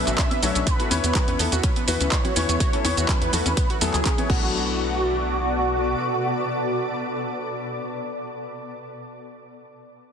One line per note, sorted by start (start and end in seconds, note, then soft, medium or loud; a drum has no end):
0.00 0.16 B2 medium
0.00 0.16 F#3 medium
0.00 0.16 A3 medium
0.00 0.16 B3 medium
0.00 0.63 B3 medium
0.00 0.16 D4 medium
0.00 0.63 D4 medium
0.00 0.63 F#4 medium
0.00 0.16 B4 loud
0.00 4.26 B4 medium
0.00 0.68 E5 loud
0.07 0.16 A1 medium
0.07 0.12 F#4 medium
0.07 clap soft
0.07 closed hi-hat soft
0.07 shaker soft
0.18 0.24 C#4 medium
0.18 kick loud
0.18 clap loud
0.18 closed hi-hat medium
0.18 shaker soft
0.31 0.34 B3 medium
0.31 closed hi-hat soft
0.31 high conga loud
0.42 0.52 B1 medium
0.42 0.64 F#3 medium
0.42 0.64 A3 medium
0.42 0.64 B3 medium
0.42 0.64 D4 medium
0.42 0.48 F#4 medium
0.42 0.64 C#5 loud
0.42 open hi-hat loud
0.42 shaker medium
0.55 0.64 B1 medium
0.55 0.61 C#4 medium
0.55 closed hi-hat soft
0.55 shaker soft
0.67 4.26 E3 medium
0.67 4.26 A3 medium
0.67 0.70 B3 medium
0.67 4.26 E4 medium
0.67 1.30 B4 loud
0.67 kick loud
0.67 closed hi-hat loud
0.67 shaker soft
0.80 0.88 E3 medium
0.80 0.88 B3 medium
0.80 0.88 E4 medium
0.80 0.85 F#4 medium
0.80 0.88 A4 medium
0.80 closed hi-hat soft
0.91 1.01 E2 loud
0.91 1.37 E3 loud
0.91 1.37 B3 medium
0.91 0.97 C#4 medium
0.91 1.37 E4 medium
0.91 1.37 C#5 loud
0.91 open hi-hat loud
0.91 high conga loud
0.91 shaker medium
1.04 1.12 E2 medium
1.04 1.07 B3 medium
1.04 closed hi-hat soft
1.04 shaker medium
1.15 1.21 F#4 medium
1.15 kick loud
1.15 clap loud
1.15 closed hi-hat loud
1.15 low conga medium
1.15 shaker soft
1.28 1.37 E2 medium
1.28 1.33 C#4 medium
1.28 closed hi-hat soft
1.39 1.49 E2 medium
1.39 1.53 E3 medium
1.39 1.43 B3 medium
1.39 1.53 B3 medium
1.39 1.53 E4 medium
1.39 1.53 A4 medium
1.39 open hi-hat loud
1.39 shaker medium
1.52 1.61 E2 medium
1.52 1.57 F#4 medium
1.52 closed hi-hat soft
1.52 high conga medium
1.52 shaker soft
1.63 1.69 C#4 medium
1.63 kick loud
1.63 closed hi-hat loud
1.63 shaker soft
1.76 1.79 B3 medium
1.76 closed hi-hat soft
1.88 1.97 E2 medium
1.88 2.09 E3 medium
1.88 2.09 B3 medium
1.88 2.09 E4 medium
1.88 1.93 F#4 medium
1.88 2.09 B4 loud
1.88 open hi-hat loud
1.88 shaker medium
2.01 2.09 D2 medium
2.01 2.06 C#4 medium
2.01 closed hi-hat soft
2.01 shaker soft
2.12 2.15 B3 medium
2.12 3.10 C#5 loud
2.12 kick loud
2.12 clap loud
2.12 closed hi-hat loud
2.12 shaker soft
2.25 2.30 F#4 medium
2.25 closed hi-hat soft
2.25 high conga medium
2.25 low conga medium
2.36 2.46 E2 loud
2.36 2.57 E3 medium
2.36 2.57 B3 medium
2.36 2.42 C#4 medium
2.36 2.57 E4 medium
2.36 2.57 C#5 loud
2.36 open hi-hat loud
2.36 shaker medium
2.49 2.58 E2 medium
2.49 2.52 B3 medium
2.49 closed hi-hat soft
2.49 shaker soft
2.60 2.66 F#4 medium
2.60 kick loud
2.60 closed hi-hat loud
2.60 shaker soft
2.73 2.82 E3 medium
2.73 2.82 B3 medium
2.73 2.78 C#4 medium
2.73 2.82 E4 medium
2.73 2.82 A4 medium
2.73 closed hi-hat soft
2.85 2.94 E2 loud
2.85 3.30 E3 loud
2.85 3.30 B3 medium
2.85 2.88 B3 medium
2.85 3.30 E4 medium
2.85 3.30 C#5 loud
2.85 open hi-hat loud
2.85 high conga loud
2.85 shaker medium
2.97 3.06 E2 medium
2.97 3.02 F#4 medium
2.97 closed hi-hat soft
2.97 shaker soft
3.09 3.14 C#4 medium
3.09 3.72 B4 loud
3.09 kick loud
3.09 clap loud
3.09 closed hi-hat loud
3.09 low conga loud
3.09 shaker soft
3.22 3.30 E2 medium
3.22 3.25 B3 medium
3.22 closed hi-hat soft
3.33 3.43 E2 medium
3.33 3.47 E3 medium
3.33 3.47 B3 medium
3.33 3.47 E4 medium
3.33 3.39 F#4 medium
3.33 3.47 A4 medium
3.33 open hi-hat loud
3.33 low conga medium
3.33 shaker medium
3.46 3.54 E2 medium
3.46 3.51 C#4 medium
3.46 closed hi-hat soft
3.46 high conga medium
3.46 shaker soft
3.57 3.61 B3 medium
3.57 kick loud
3.57 closed hi-hat loud
3.57 shaker soft
3.70 3.75 F#4 medium
3.70 closed hi-hat soft
3.81 3.91 E2 medium
3.81 3.95 E3 medium
3.81 3.85 F#3 medium
3.81 3.95 B3 medium
3.81 3.95 E4 medium
3.81 4.29 G#4 loud
3.81 3.95 A4 loud
3.81 open hi-hat loud
3.81 shaker medium
3.94 4.03 D2 medium
3.94 4.02 F#3 loud
3.94 clap soft
3.94 closed hi-hat soft
3.94 shaker soft
4.05 4.11 C#4 medium
4.05 kick loud
4.05 clap loud
4.05 closed hi-hat loud
4.05 shaker soft
4.18 4.28 E3 medium
4.18 4.28 B3 medium
4.18 4.23 B3 medium
4.18 4.28 E4 medium
4.18 4.28 C#5 medium
4.18 closed hi-hat soft
4.18 high conga loud
4.29 5.95 B1 loud
4.29 8.04 B2 medium
4.29 8.04 F#3 medium
4.29 8.04 A3 medium
4.29 8.04 B3 medium
4.29 4.75 B3 medium
4.29 8.04 D4 medium
4.29 8.04 F#4 loud
4.29 8.04 A4 medium
4.29 8.04 A4 loud
4.29 8.04 D5 medium
4.29 kick loud
4.29 crash medium